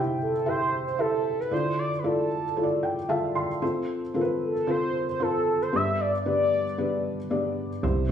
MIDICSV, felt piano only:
0, 0, Header, 1, 2, 480
1, 0, Start_track
1, 0, Tempo, 526316
1, 1381, Time_signature, 4, 2, 24, 8
1, 7404, End_track
2, 0, Start_track
2, 0, Title_t, "Felt piano"
2, 0, Program_c, 0, 0
2, 0, Control_c, 0, 64, 127
2, 0, Note_on_c, 0, 48, 61
2, 0, Note_on_c, 0, 63, 55
2, 0, Note_on_c, 0, 64, 70
2, 0, Note_on_c, 0, 67, 68
2, 0, Note_on_c, 0, 72, 64
2, 0, Note_on_c, 0, 76, 78
2, 0, Note_on_c, 0, 79, 77
2, 144, Note_off_c, 0, 48, 0
2, 293, Note_off_c, 0, 67, 0
2, 294, Note_off_c, 0, 72, 0
2, 295, Note_off_c, 0, 79, 0
2, 321, Note_off_c, 0, 64, 0
2, 418, Note_on_c, 0, 64, 63
2, 418, Note_on_c, 0, 72, 57
2, 420, Note_on_c, 0, 67, 56
2, 421, Note_off_c, 0, 76, 0
2, 421, Note_on_c, 0, 76, 66
2, 774, Note_off_c, 0, 64, 0
2, 774, Note_off_c, 0, 72, 0
2, 775, Note_off_c, 0, 67, 0
2, 775, Note_off_c, 0, 76, 0
2, 896, Note_on_c, 0, 64, 58
2, 899, Note_on_c, 0, 67, 50
2, 901, Note_on_c, 0, 72, 50
2, 902, Note_on_c, 0, 76, 65
2, 1253, Note_off_c, 0, 64, 0
2, 1254, Note_off_c, 0, 67, 0
2, 1255, Note_off_c, 0, 72, 0
2, 1256, Note_off_c, 0, 76, 0
2, 1376, Note_on_c, 0, 64, 61
2, 1379, Note_on_c, 0, 50, 50
2, 1380, Note_on_c, 0, 65, 55
2, 1381, Note_on_c, 0, 69, 58
2, 1382, Note_on_c, 0, 74, 68
2, 1393, Control_c, 0, 64, 0
2, 1400, Note_off_c, 0, 63, 0
2, 1532, Control_c, 0, 64, 127
2, 1733, Note_off_c, 0, 64, 0
2, 1735, Note_off_c, 0, 65, 0
2, 1736, Note_off_c, 0, 69, 0
2, 1736, Note_off_c, 0, 74, 0
2, 1859, Note_on_c, 0, 64, 61
2, 1860, Note_on_c, 0, 65, 54
2, 1863, Note_on_c, 0, 69, 59
2, 1863, Note_on_c, 0, 74, 69
2, 2063, Note_off_c, 0, 50, 0
2, 2214, Note_off_c, 0, 64, 0
2, 2215, Note_off_c, 0, 65, 0
2, 2216, Note_off_c, 0, 69, 0
2, 2216, Note_off_c, 0, 74, 0
2, 2339, Note_on_c, 0, 64, 60
2, 2341, Note_on_c, 0, 65, 58
2, 2344, Note_on_c, 0, 73, 54
2, 2345, Note_on_c, 0, 69, 58
2, 2400, Note_off_c, 0, 73, 0
2, 2402, Note_on_c, 0, 74, 69
2, 2580, Note_on_c, 0, 79, 58
2, 2695, Note_off_c, 0, 64, 0
2, 2696, Note_off_c, 0, 65, 0
2, 2697, Note_off_c, 0, 69, 0
2, 2726, Note_off_c, 0, 74, 0
2, 2804, Note_off_c, 0, 79, 0
2, 2817, Note_on_c, 0, 76, 66
2, 2820, Note_on_c, 0, 65, 62
2, 2821, Note_on_c, 0, 69, 65
2, 2821, Note_on_c, 0, 81, 54
2, 2822, Note_on_c, 0, 77, 75
2, 3044, Note_off_c, 0, 81, 0
2, 3059, Note_on_c, 0, 84, 62
2, 3173, Note_off_c, 0, 76, 0
2, 3175, Note_off_c, 0, 65, 0
2, 3175, Note_off_c, 0, 69, 0
2, 3176, Note_off_c, 0, 77, 0
2, 3283, Note_off_c, 0, 84, 0
2, 3300, Note_on_c, 0, 60, 74
2, 3301, Note_on_c, 0, 65, 66
2, 3303, Note_on_c, 0, 69, 67
2, 3305, Note_on_c, 0, 72, 77
2, 3313, Control_c, 0, 64, 0
2, 3469, Control_c, 0, 64, 127
2, 3655, Note_off_c, 0, 60, 0
2, 3655, Note_off_c, 0, 65, 0
2, 3656, Note_off_c, 0, 69, 0
2, 3657, Note_off_c, 0, 72, 0
2, 3777, Note_on_c, 0, 60, 71
2, 3778, Note_on_c, 0, 65, 68
2, 3782, Note_on_c, 0, 69, 65
2, 3782, Note_on_c, 0, 70, 61
2, 3839, Note_off_c, 0, 70, 0
2, 3839, Note_on_c, 0, 71, 81
2, 4133, Note_off_c, 0, 60, 0
2, 4134, Note_off_c, 0, 65, 0
2, 4136, Note_off_c, 0, 69, 0
2, 4164, Note_off_c, 0, 71, 0
2, 4257, Note_on_c, 0, 60, 65
2, 4258, Note_on_c, 0, 65, 59
2, 4260, Note_on_c, 0, 69, 57
2, 4263, Note_on_c, 0, 72, 71
2, 4613, Note_off_c, 0, 60, 0
2, 4614, Note_off_c, 0, 65, 0
2, 4614, Note_off_c, 0, 69, 0
2, 4616, Note_off_c, 0, 72, 0
2, 4739, Note_on_c, 0, 60, 56
2, 4741, Note_on_c, 0, 65, 54
2, 4742, Note_on_c, 0, 69, 52
2, 4743, Note_on_c, 0, 72, 62
2, 5094, Note_off_c, 0, 60, 0
2, 5095, Note_off_c, 0, 65, 0
2, 5095, Note_off_c, 0, 69, 0
2, 5096, Note_off_c, 0, 72, 0
2, 5222, Note_on_c, 0, 59, 63
2, 5224, Note_on_c, 0, 62, 58
2, 5226, Note_on_c, 0, 67, 57
2, 5226, Note_on_c, 0, 71, 66
2, 5227, Note_on_c, 0, 43, 52
2, 5233, Control_c, 0, 64, 0
2, 5401, Control_c, 0, 64, 127
2, 5575, Note_off_c, 0, 59, 0
2, 5576, Note_off_c, 0, 62, 0
2, 5578, Note_off_c, 0, 67, 0
2, 5578, Note_off_c, 0, 71, 0
2, 5704, Note_on_c, 0, 59, 62
2, 5705, Note_on_c, 0, 62, 54
2, 5708, Note_on_c, 0, 67, 54
2, 5710, Note_on_c, 0, 71, 68
2, 5907, Note_off_c, 0, 43, 0
2, 6056, Note_off_c, 0, 59, 0
2, 6057, Note_off_c, 0, 62, 0
2, 6058, Note_off_c, 0, 67, 0
2, 6059, Note_off_c, 0, 71, 0
2, 6181, Note_on_c, 0, 59, 58
2, 6184, Note_on_c, 0, 62, 57
2, 6187, Note_on_c, 0, 71, 65
2, 6188, Note_on_c, 0, 67, 58
2, 6535, Note_off_c, 0, 59, 0
2, 6536, Note_off_c, 0, 62, 0
2, 6538, Note_off_c, 0, 67, 0
2, 6538, Note_off_c, 0, 71, 0
2, 6659, Note_on_c, 0, 59, 65
2, 6662, Note_on_c, 0, 62, 59
2, 6663, Note_on_c, 0, 67, 64
2, 6665, Note_on_c, 0, 74, 70
2, 7013, Note_off_c, 0, 59, 0
2, 7015, Note_off_c, 0, 62, 0
2, 7016, Note_off_c, 0, 67, 0
2, 7017, Note_off_c, 0, 74, 0
2, 7144, Note_on_c, 0, 64, 66
2, 7145, Note_on_c, 0, 48, 60
2, 7145, Note_on_c, 0, 60, 72
2, 7146, Note_on_c, 0, 72, 80
2, 7147, Note_on_c, 0, 67, 63
2, 7152, Control_c, 0, 64, 0
2, 7319, Control_c, 0, 64, 127
2, 7404, Note_off_c, 0, 48, 0
2, 7404, Note_off_c, 0, 60, 0
2, 7404, Note_off_c, 0, 64, 0
2, 7404, Note_off_c, 0, 67, 0
2, 7404, Note_off_c, 0, 72, 0
2, 7404, End_track
0, 0, End_of_file